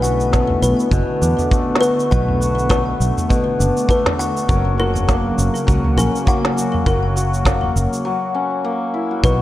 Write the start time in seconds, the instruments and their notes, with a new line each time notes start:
Already playing: fingered electric bass B1, hammered dulcimer B2 A3 C#4 E4 B4, analog synth pad D3 A3 B3
0.02 hammered dulcimer F#4, kalimba F#5, shaker
0.20 shaker
0.32 hammered dulcimer A3, kick, snare, shaker
0.50 mid tom
0.62 fingered electric bass B1, kalimba B4, shaker
0.80 shaker
0.91 fingered electric bass F#1, hammered dulcimer B2, kick, shaker
1.21 fingered electric bass E2, hammered dulcimer D4, shaker
1.39 mid tom, shaker
1.51 hammered dulcimer A3, kick, shaker
1.75 snare
1.81 hammered dulcimer F#4, kalimba B4, shaker
2.00 shaker
2.11 fingered electric bass B1, hammered dulcimer B2 B4, kalimba F#5, kick, shaker
2.28 mid tom
2.40 hammered dulcimer F#4, shaker
2.59 shaker
2.70 hammered dulcimer A3, kalimba B4, kick, snare, shaker
3.00 fingered electric bass B1, shaker
3.18 mid tom, shaker
3.29 hammered dulcimer B2, kick, shaker
3.59 fingered electric bass F#1, hammered dulcimer D4, shaker
3.77 shaker
3.89 hammered dulcimer A3, kalimba B4, kick, shaker
4.06 snare, mid tom
4.18 hammered dulcimer F#4, kalimba F#5, shaker
4.37 shaker
4.48 fingered electric bass F#1, analog synth pad C#3 F#3 A#3, hammered dulcimer F#3 A#4, kick, shaker
4.78 hammered dulcimer F#4, kalimba A#4
4.95 mid tom, shaker
5.08 hammered dulcimer A#3, kick, snare, shaker
5.38 fingered electric bass F#1, shaker
5.55 shaker
5.67 fingered electric bass C#2, hammered dulcimer F#3, kick, shaker
5.84 mid tom
5.97 fingered electric bass A#1, hammered dulcimer C#4, kalimba A#4, shaker
6.16 shaker
6.26 hammered dulcimer A#3, kalimba F#5, kick, shaker
6.45 snare
6.56 hammered dulcimer F#4, shaker
6.74 mid tom
6.86 fingered electric bass F#1, hammered dulcimer F#3 A#4, kalimba A#4, kick, shaker
7.16 hammered dulcimer F#4, shaker
7.34 shaker
7.45 hammered dulcimer A#3, kick, snare, shaker
7.63 mid tom
7.76 fingered electric bass F#1, shaker
7.93 shaker
8.05 hammered dulcimer F#3
8.35 hammered dulcimer C#4
8.64 hammered dulcimer A#3
8.94 hammered dulcimer E4
9.11 hammered dulcimer F#4
9.24 fingered electric bass B1, hammered dulcimer B2 F#4, analog synth pad D3 B3 C#5, kalimba B4, kick, shaker